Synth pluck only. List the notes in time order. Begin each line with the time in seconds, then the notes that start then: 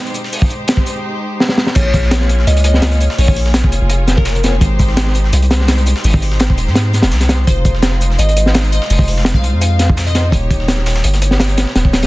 1.76 C#5
2.47 D#5
2.66 D#5
3.18 C#5
3.28 C#5
4.17 A#4
7.47 C5
8.19 D#5
8.72 D#5
9.35 F5
9.61 F5
10.07 D#5